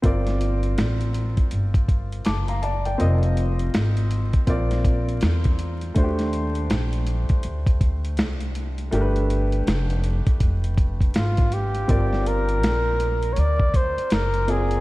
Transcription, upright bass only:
X:1
M:4/4
L:1/16
Q:"Swing 16ths" 1/4=81
K:Gm
V:1 name="Upright bass" clef=bass
G,,,4 A,,,3 z G,,,4 ^F,,,4 | F,,,4 _A,,,3 z B,,,4 =E,,4 | E,,4 B,,,3 z D,,4 C,,4 | G,,,4 F,,,3 z F,,,4 _A,,,4 |
G,,,4 B,,,4 D,,3 z ^F,,,4 |]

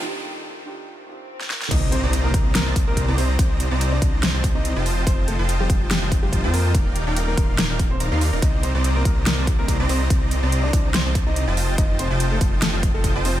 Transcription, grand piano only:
X:1
M:4/4
L:1/16
Q:"Swing 16ths" 1/4=143
K:Cdor
V:1 name="Grand piano"
z16 | [Ee] z [Cc]2 z [B,B]2 z [B,B]2 z [B,B]2 z [Cc]2- | [Cc] z4 [Dd]2 z [Cc]2 z [Ee]2 z3 | [Cc] z [A,A]2 z [G,G]2 z [G,G]2 z [G,G]2 z [B,B]2- |
[B,B] z4 [B,B]2 z [B,B]2 z [Cc]2 z3 | [Ee] z [Cc]2 z [B,B]2 z [B,B]2 z [B,B]2 z [Cc]2- | [Cc] z4 [Dd]2 z [Cc]2 z [Ee]2 z3 | [Ee] z [Cc]2 z [A,A]2 z [A,A]2 z [A,A]2 z [Cc]2 |]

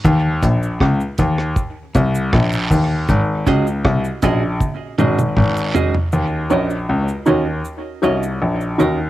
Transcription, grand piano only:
X:1
M:4/4
L:1/16
Q:1/4=79
K:Ebdor
V:1 name="Grand piano" clef=bass
E,,2 B,,,2 D,, z E,,2 z2 C,,2 B,,,2 E,,2 | A,,,2 D,,2 C,, z B,,,2 z2 A,,,2 A,,,3 z | E,,2 B,,,2 D,, z E,,2 z2 C,,2 B,,,2 E,,2 |]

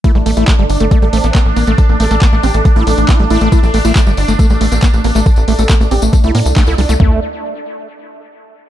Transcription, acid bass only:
X:1
M:4/4
L:1/16
Q:1/4=138
K:Aphr
V:1 name="Acid bass"
A, G, A, A, A, G, z A, A, G, A, B, B, z B, A, | z2 A, A, B, A, C z A, A, A, z B, G, A, A, | A, G, A, A, A, G, z A, A, G, A, B, B, z B, A, | z2 A, A, B, A, C z A, A, B, z A, E G, A, |
A,2 z12 z2 |]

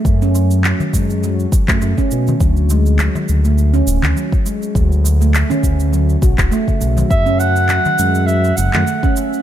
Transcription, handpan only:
X:1
M:4/4
L:1/16
Q:"Swing 16ths" 1/4=102
K:F#m
V:1 name="Handpan" clef=bass
A, C z2 F, z G, z F, z2 A,2 C z2 | F, z G, z F, z2 A,2 C z2 F, z G, z | F, z2 A,2 C z2 F, z F z A, C, F, F, | z C z2 F, z G, z F, z2 A,2 C z2 |]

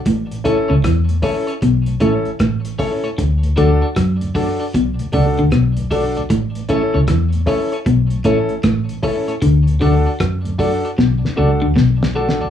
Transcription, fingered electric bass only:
X:1
M:4/4
L:1/16
Q:"Swing 16ths" 1/4=77
K:D
V:1 name="Fingered electric bass" clef=bass
A,,,3 C,, E,,2 z2 B,,,2 A,,, z A,,,2 z2 | D,,2 D,, z F,,3 z B,,, z C,, D,, B,,,4 | A,,,3 C,, E,,2 z2 B,,,2 A,,, z A,,,2 z2 | D,,2 D,, z F,,3 z B,,, z C,, D,, B,,,4 |]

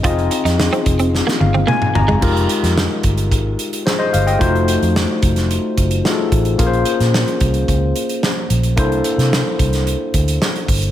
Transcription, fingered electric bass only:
X:1
M:4/4
L:1/16
Q:1/4=110
K:Fm
V:1 name="Fingered electric bass" clef=bass
F,,,2 z F,,2 z F,,,3 z G,,,2 z2 G,,,2 | F,,,2 z F,,2 z G,,,2 A,,,2 z4 G,,,2 | F,,,3 F,,2 z F,,,3 z _G,,,2 z2 =A,,,2 | B,,,2 z B,,2 z C,,2 D,,2 z4 B,,,2 |
C,,2 z C,2 z C,,3 z =D,,2 z2 G,,,2 |]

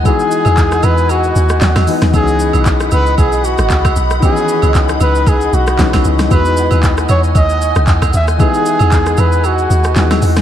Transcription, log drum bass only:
X:1
M:4/4
L:1/16
Q:"Swing 16ths" 1/4=115
K:E
V:1 name="Log drum bass" clef=bass
z3 E,,3 E,,4 D,,2 D,, E,, z D,, | C,,3 B,,,3 C,,2 B,,,3 G,,, C,,2 B,,,2 | z3 C,,3 C,,4 B,,,2 B,,,2 C,,2 | E,,3 D,,3 E,,2 D,,3 C,, E,,2 D,,2 |
z3 E,,3 E,,4 D,,2 D,,2 E,,2 |]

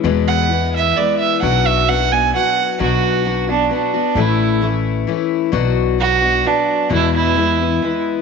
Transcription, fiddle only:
X:1
M:3/4
L:1/8
Q:1/4=131
K:Bdor
V:1 name="Fiddle"
z f2 e d e | f e f g f2 | F3 D D2 | E2 z4 |
z2 F2 D2 | E E4 z |]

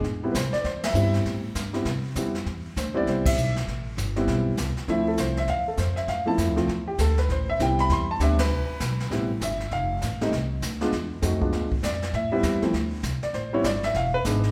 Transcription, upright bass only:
X:1
M:4/4
L:1/8
Q:"Swing" 1/4=198
K:Am
V:1 name="Upright bass" clef=bass
A,,,2 C,, z E,,2 G,,2 | A,,2 G,,2 C,2 F,,2 | E,,2 D,,2 C,,2 B,,,2 | A,,,2 G,,,2 B,,,2 C,, z |
D,,2 C,,2 E,,2 F,,2 | A,,2 (3F,, D,, C,, E,,2 D,,2 | A,,,2 C,,2 E,,2 D,,2 | C,, z B,,,2 A,,,2 G,,,2 |
F,,,2 A,,,2 C,,2 D,,2 | E,,2 F,,2 D,, z F,,2 | A,,2 E,, z D,,2 C,, z | A,,,2 G,,,2 E,,,2 ^G,,,2 |]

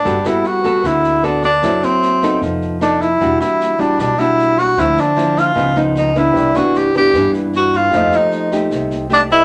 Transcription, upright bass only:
X:1
M:4/4
L:1/8
Q:1/4=153
K:G
V:1 name="Upright bass" clef=bass
G,,, z3 D,,4 | F,,, z3 =F,,,4 | E,,, z3 B,,,4 | D,, z3 ^C,,4 |
C,, z3 G,,4 | =F,, z3 C,,4 |]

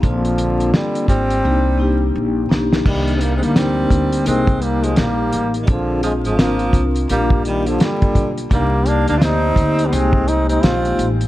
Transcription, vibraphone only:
X:1
M:4/4
L:1/16
Q:"Swing 16ths" 1/4=85
K:Cm
V:1 name="Vibraphone"
[B,CDF]6- [B,CDF] z [B,DEG]2 [B,DEG]4 [B,DEG]2 | [B,DEG]4 [B,DEB]4 [B,EGB]6- [B,EGB] z | [CDFA]4 [CDFB]4 [B,DFG]6- [B,DFG] z | [B,DEG]4 [B,EGd]4 [G,A,B,EG]6- [G,A,B,EG] z |]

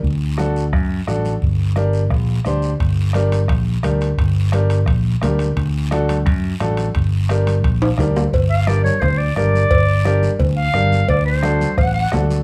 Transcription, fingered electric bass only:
X:1
M:4/4
L:1/8
Q:1/4=174
K:Gm
V:1 name="Fingered electric bass" clef=bass
D,,4 ^F,,2 A,,,2 | G,,,4 B,,,2 D,,2 | G,,,4 B,,,2 D,,2 | G,,,4 B,,,2 D,,2 |
D,,4 ^F,,2 A,,,2 | G,,,4 B,,,2 D,,2 | G,,,4 D,,2 G,,,2 | G,,,4 D,,2 G,,,2 |
D,,4 A,,,2 D,,2 |]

